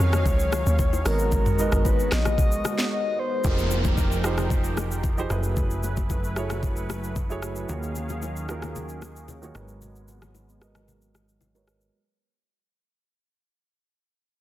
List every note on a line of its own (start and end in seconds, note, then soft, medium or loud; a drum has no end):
0.00 0.24 F2 medium
0.00 1.04 D#3 medium
0.00 1.08 D#3 medium
0.00 1.04 F#3 medium
0.00 1.04 C#4 medium
0.00 1.07 C#4 medium
0.00 1.07 F4 medium
0.00 1.06 F#4 medium
0.00 1.07 G#4 medium
0.00 0.32 A#4 medium
0.00 1.02 C#5 loud
0.00 1.04 F5 medium
0.00 1.01 G#5 medium
0.00 shaker medium
0.13 cross-stick loud
0.13 low bongo medium
0.13 shaker medium
0.26 0.63 C#2 medium
0.26 kick loud
0.26 low conga medium
0.26 shaker medium
0.39 shaker medium
0.52 cross-stick loud
0.52 high bongo medium
0.52 low bongo medium
0.52 shaker medium
0.66 1.03 D#2 medium
0.66 shaker medium
0.79 kick medium
0.79 high bongo medium
0.79 low conga medium
0.79 shaker medium
0.93 high bongo medium
0.93 shaker soft
1.05 1.30 G#1 loud
1.05 1.48 G#3 medium
1.05 3.42 G#3 medium
1.05 3.42 B3 medium
1.05 1.49 B3 medium
1.05 1.48 D#4 medium
1.05 3.42 F#4 medium
1.05 1.49 F#4 medium
1.05 1.88 A#4 loud
1.05 1.49 A#4 medium
1.05 1.49 C#5 medium
1.05 cross-stick medium
1.05 open hi-hat medium
1.05 shaker medium
1.19 shaker medium
1.32 1.70 G#1 loud
1.32 kick loud
1.32 low conga medium
1.32 shaker medium
1.46 mid tom loud
1.46 shaker medium
1.58 2.44 G#3 medium
1.58 2.44 D#4 medium
1.58 2.44 F#4 medium
1.58 2.44 A#4 medium
1.58 2.45 B4 medium
1.58 2.45 D#5 medium
1.58 shaker medium
1.72 2.09 G#1 loud
1.72 kick loud
1.72 cross-stick loud
1.72 mid tom medium
1.72 shaker medium
1.85 2.12 B4 medium
1.85 kick medium
1.85 high bongo medium
1.85 shaker medium
2.00 shaker soft
2.12 2.61 A#1 medium
2.12 2.88 D#5 loud
2.12 cross-stick loud
2.12 snare medium
2.12 shaker medium
2.25 cross-stick loud
2.25 low bongo medium
2.25 shaker medium
2.38 kick loud
2.38 low conga medium
2.38 shaker medium
2.52 shaker medium
2.65 cross-stick loud
2.65 low bongo medium
2.65 shaker loud
2.79 snare medium
2.79 shaker medium
2.92 3.21 D#5 medium
3.19 3.85 C5 medium
3.44 5.27 F1 medium
3.44 4.08 F3 medium
3.44 5.29 F3 medium
3.44 5.29 D#4 medium
3.44 4.09 D#4 medium
3.44 4.09 G4 medium
3.44 4.09 G#4 medium
3.44 5.28 A#4 medium
3.44 4.10 A#4 medium
3.44 5.28 G5 medium
3.44 kick loud
3.44 downlifter medium
3.44 low conga medium
3.44 shaker medium
3.58 shaker soft
3.71 low bongo medium
3.71 shaker medium
3.85 kick loud
3.85 low bongo medium
3.85 shaker medium
3.97 kick medium
3.97 high bongo medium
3.97 shaker medium
4.12 shaker soft
4.24 4.98 F3 medium
4.24 4.99 D#4 medium
4.24 4.99 G4 medium
4.24 4.99 G#4 medium
4.24 5.00 C5 loud
4.24 cross-stick medium
4.24 shaker medium
4.38 cross-stick medium
4.38 low bongo medium
4.38 shaker medium
4.50 kick loud
4.50 low conga medium
4.50 shaker medium
4.64 shaker medium
4.77 cross-stick medium
4.77 high bongo soft
4.77 low bongo medium
4.77 shaker medium
4.91 shaker medium
5.03 kick medium
5.03 high bongo medium
5.03 low conga medium
5.03 shaker medium
5.17 5.30 F3 medium
5.17 5.30 D#4 medium
5.17 5.31 G4 medium
5.17 5.29 G#4 medium
5.17 5.31 C5 loud
5.17 shaker soft
5.30 7.65 F#1 medium
5.30 6.15 F#3 medium
5.30 7.67 F#3 medium
5.30 7.67 A3 medium
5.30 6.15 E4 medium
5.30 7.67 E4 medium
5.30 6.16 G#4 medium
5.30 6.16 A4 medium
5.30 7.67 B4 medium
5.30 6.16 B4 loud
5.30 cross-stick medium
5.30 shaker medium
5.43 shaker medium
5.57 kick loud
5.57 low conga medium
5.57 shaker medium
5.70 shaker soft
5.83 low bongo medium
5.83 shaker medium
5.97 kick loud
5.97 low bongo medium
5.97 shaker medium
6.10 kick medium
6.10 high bongo medium
6.10 shaker medium
6.24 shaker soft
6.36 7.11 F#3 medium
6.36 7.11 E4 medium
6.36 7.11 G#4 medium
6.36 7.12 A4 medium
6.36 7.12 C#5 loud
6.36 cross-stick medium
6.36 shaker medium
6.50 cross-stick loud
6.50 low bongo medium
6.50 shaker medium
6.63 kick loud
6.63 low conga medium
6.63 shaker medium
6.76 shaker medium
6.90 cross-stick medium
6.90 high bongo medium
6.90 low bongo medium
6.90 shaker medium
7.04 shaker medium
7.16 kick medium
7.16 high bongo medium
7.16 low conga medium
7.16 shaker medium
7.29 7.61 F#3 medium
7.29 7.62 E4 medium
7.29 7.62 G#4 medium
7.29 7.62 A4 medium
7.29 7.62 C#5 loud
7.29 shaker soft
7.42 cross-stick medium
7.42 shaker medium
7.56 shaker medium
7.69 9.51 D#2 medium
7.69 8.33 D#3 medium
7.69 9.53 D#3 medium
7.69 11.90 F#3 medium
7.69 8.33 A#3 medium
7.69 9.53 C#4 medium
7.69 8.34 F4 medium
7.69 8.34 F#4 medium
7.69 9.53 G#4 medium
7.69 8.34 G#4 medium
7.69 8.34 C#5 medium
7.69 9.53 F5 medium
7.69 low conga medium
7.69 shaker medium
7.83 shaker soft
7.96 low bongo medium
7.96 shaker medium
8.09 low bongo medium
8.09 shaker medium
8.22 high bongo medium
8.22 shaker medium
8.36 shaker soft
8.48 9.23 D#3 medium
8.48 9.23 A#3 medium
8.48 9.24 F4 medium
8.48 9.24 F#4 medium
8.48 9.24 G#4 medium
8.48 9.24 A#4 medium
8.48 cross-stick medium
8.48 shaker medium
8.62 cross-stick medium
8.62 low bongo medium
8.62 shaker soft
8.76 low conga medium
8.76 shaker medium
8.89 shaker medium
9.02 cross-stick medium
9.02 high bongo medium
9.02 low bongo medium
9.02 shaker medium
9.16 shaker medium
9.28 high bongo medium
9.28 low conga medium
9.28 shaker medium
9.42 9.55 D#3 medium
9.42 9.55 A#3 medium
9.42 9.55 F4 medium
9.42 9.54 F#4 medium
9.42 9.56 G#4 medium
9.42 9.55 C#5 loud
9.42 shaker soft
9.55 11.90 G#1 medium
9.55 10.40 G#3 medium
9.55 11.92 G#3 medium
9.55 11.92 B3 medium
9.55 10.40 F#4 medium
9.55 10.41 A#4 medium
9.55 10.41 B4 medium
9.55 10.41 C#5 medium
9.55 cross-stick medium
9.55 shaker medium
9.68 shaker medium
9.82 low conga medium
9.82 shaker medium
9.96 shaker soft
10.08 low bongo medium
10.08 shaker medium
10.22 cross-stick medium
10.22 low bongo medium
10.22 shaker medium
10.35 high bongo medium
10.35 shaker medium
10.49 shaker soft
10.61 11.36 G#3 medium
10.61 11.36 F#4 medium
10.61 11.36 A#4 medium
10.61 11.36 B4 medium
10.61 11.37 D#5 medium
10.61 cross-stick medium
10.61 shaker medium
10.75 cross-stick loud
10.75 low bongo medium
10.75 shaker medium
10.88 low conga medium
10.88 shaker medium
11.02 shaker medium
11.14 cross-stick medium
11.14 low bongo medium
11.14 shaker medium
11.29 shaker medium
11.41 high bongo medium
11.41 low conga medium
11.41 shaker medium
11.54 11.86 G#3 medium
11.54 11.86 F#4 medium
11.54 11.87 A#4 medium
11.54 11.87 B4 medium
11.54 11.87 C#5 loud
11.54 high bongo medium
11.54 shaker soft
11.68 cross-stick medium
11.68 shaker medium
11.81 shaker medium